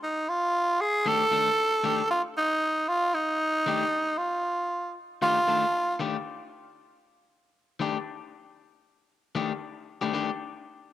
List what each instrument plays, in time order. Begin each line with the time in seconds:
0.03 tenor saxophone D#4
0.29 tenor saxophone F4
0.81 tenor saxophone G#4
1.06 clean electric guitar D#3 A3 D4 G4, tenor saxophone A4
1.31 clean electric guitar D#3 A3 D4 A4
1.84 clean electric guitar D#3 A3 D4 G4
2.11 tenor saxophone F4
2.37 tenor saxophone D#4
2.88 tenor saxophone F4
3.14 tenor saxophone D#4
3.66 clean electric guitar D#3 A3 D4 G4
4.18 tenor saxophone F4
5.22 clean electric guitar D#3 A3 D4 G4, tenor saxophone F4
5.48 clean electric guitar D#3 A3 D4 A4
6.00 clean electric guitar D#3 A3 D4 G4
7.80 clean electric guitar D#3 A3 D4 G4
9.35 clean electric guitar D#3 A3 D4 G4
10.01 clean electric guitar D#3 A3 D4 G4
10.13 clean electric guitar D#3 A3 D4 G4